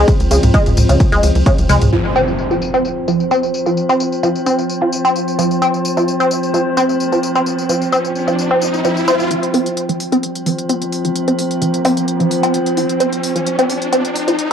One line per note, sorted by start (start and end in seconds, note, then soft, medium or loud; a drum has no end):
0.00 1.91 F3 medium
0.00 1.91 C4 medium
0.08 kick loud
0.08 closed hi-hat medium
0.08 ride medium
0.08 tambourine soft
0.20 0.28 C#2 medium
0.20 closed hi-hat medium
0.20 ride medium
0.20 tambourine soft
0.31 0.39 C#2 loud
0.31 0.42 C#3 medium
0.31 open hi-hat loud
0.31 ride medium
0.31 tambourine medium
0.43 0.51 C#2 medium
0.43 closed hi-hat medium
0.43 mid tom medium
0.43 ride medium
0.43 tambourine soft
0.54 0.58 G#3 loud
0.54 kick loud
0.54 closed hi-hat medium
0.54 ride medium
0.54 tambourine soft
0.66 0.74 C#2 medium
0.66 closed hi-hat medium
0.66 mid tom medium
0.66 ride medium
0.66 tambourine soft
0.77 0.85 C#2 loud
0.77 mid tom medium
0.77 open hi-hat medium
0.77 ride medium
0.77 tambourine medium
0.89 0.97 C#2 medium
0.89 0.99 C#3 medium
0.89 closed hi-hat medium
0.89 ride medium
0.89 tambourine soft
1.00 kick loud
1.00 closed hi-hat medium
1.00 ride medium
1.00 tambourine soft
1.12 1.20 C#2 medium
1.12 1.16 G#3 loud
1.12 closed hi-hat medium
1.12 ride medium
1.12 tambourine soft
1.23 1.32 C#2 loud
1.23 open hi-hat loud
1.23 ride medium
1.23 tambourine medium
1.35 1.43 C#2 loud
1.35 closed hi-hat medium
1.35 ride medium
1.35 tambourine soft
1.46 1.58 C#3 medium
1.46 kick loud
1.46 closed hi-hat medium
1.46 ride medium
1.46 tambourine soft
1.59 1.66 C#2 medium
1.59 closed hi-hat medium
1.59 high tom medium
1.59 ride medium
1.59 tambourine soft
1.69 1.78 C#2 loud
1.69 1.74 G#3 loud
1.69 open hi-hat medium
1.69 mid tom medium
1.69 ride medium
1.69 tambourine medium
1.82 1.89 C#2 medium
1.82 closed hi-hat medium
1.82 mid tom medium
1.82 ride medium
1.82 tambourine soft
1.92 9.30 F3 medium
1.92 2.04 F3 medium
1.92 9.30 C4 medium
1.92 tambourine soft
1.92 impact medium
2.05 tambourine soft
2.16 2.20 C4 loud
2.16 tambourine medium
2.28 tambourine soft
2.39 tambourine soft
2.51 2.61 F3 medium
2.51 tambourine soft
2.62 tambourine medium
2.74 2.78 C4 loud
2.74 tambourine soft
2.85 tambourine soft
3.08 3.19 F3 medium
3.08 tambourine medium
3.20 tambourine soft
3.31 3.35 C4 loud
3.31 tambourine soft
3.43 tambourine soft
3.54 tambourine medium
3.66 3.76 F3 medium
3.66 tambourine soft
3.77 tambourine soft
3.89 3.93 C4 loud
3.89 tambourine soft
4.00 tambourine medium
4.12 tambourine soft
4.23 4.34 F3 medium
4.23 tambourine soft
4.35 tambourine soft
4.46 4.51 C4 loud
4.46 tambourine medium
4.59 tambourine soft
4.69 tambourine soft
4.82 4.92 F3 medium
4.92 tambourine medium
5.05 5.09 C4 loud
5.05 tambourine soft
5.16 tambourine soft
5.28 tambourine soft
5.39 5.50 F3 medium
5.39 tambourine medium
5.51 tambourine soft
5.62 5.66 C4 loud
5.62 tambourine soft
5.62 riser medium
5.74 tambourine soft
5.85 tambourine medium
5.97 6.07 F3 medium
5.97 tambourine soft
6.08 tambourine soft
6.20 6.24 C4 loud
6.20 tambourine soft
6.31 tambourine medium
6.43 tambourine soft
6.54 6.65 F3 medium
6.54 tambourine soft
6.77 6.82 C4 loud
6.77 tambourine medium
6.89 tambourine soft
7.00 tambourine soft
7.12 7.22 F3 medium
7.12 tambourine soft
7.23 tambourine medium
7.35 7.40 C4 loud
7.35 tambourine soft
7.46 tambourine soft
7.59 tambourine soft
7.69 7.81 F3 medium
7.69 tambourine medium
7.82 tambourine soft
7.93 7.97 C4 loud
7.93 tambourine soft
8.05 tambourine soft
8.16 tambourine medium
8.28 8.38 F3 medium
8.28 tambourine soft
8.39 tambourine soft
8.51 8.55 C4 loud
8.62 tambourine medium
8.74 tambourine soft
8.85 8.96 F3 medium
8.85 tambourine soft
8.97 tambourine soft
9.08 9.12 C4 loud
9.08 tambourine medium
9.20 tambourine soft
9.31 14.53 F3 medium
9.31 9.42 F3 medium
9.31 14.53 C4 medium
9.31 closed hi-hat medium
9.31 riser medium
9.43 closed hi-hat medium
9.54 9.58 C4 loud
9.54 open hi-hat loud
9.66 closed hi-hat medium
9.77 closed hi-hat medium
9.89 9.99 F3 medium
9.89 closed hi-hat medium
10.00 open hi-hat medium
10.12 10.16 C4 loud
10.12 closed hi-hat medium
10.23 closed hi-hat medium
10.35 closed hi-hat medium
10.46 10.57 F3 medium
10.46 open hi-hat loud
10.59 closed hi-hat medium
10.69 10.74 C4 loud
10.69 closed hi-hat medium
10.82 closed hi-hat medium
10.92 open hi-hat medium
11.05 11.15 F3 medium
11.05 closed hi-hat medium
11.16 closed hi-hat medium
11.28 11.32 C4 loud
11.28 closed hi-hat medium
11.39 open hi-hat loud
11.51 closed hi-hat medium
11.62 11.73 F3 medium
11.62 closed hi-hat medium
11.74 closed hi-hat medium
11.85 11.89 C4 loud
11.85 open hi-hat loud
11.97 closed hi-hat medium
12.08 closed hi-hat medium
12.20 12.30 F3 medium
12.20 closed hi-hat medium
12.31 open hi-hat loud
12.43 12.47 C4 loud
12.43 closed hi-hat medium
12.54 closed hi-hat medium
12.66 closed hi-hat medium
12.77 12.88 F3 medium
12.77 open hi-hat medium
12.89 closed hi-hat medium
13.00 13.05 C4 medium
13.00 closed hi-hat medium
13.12 closed hi-hat medium
13.23 open hi-hat loud
13.36 13.45 F3 medium
13.36 closed hi-hat medium
13.46 closed hi-hat medium
13.59 13.63 C4 medium
13.59 closed hi-hat medium
13.69 open hi-hat loud
13.82 closed hi-hat medium
13.92 13.97 C4 loud
13.92 closed hi-hat medium
14.05 closed hi-hat medium
14.16 open hi-hat loud
14.28 14.38 F3 medium
14.28 closed hi-hat medium
14.39 closed hi-hat medium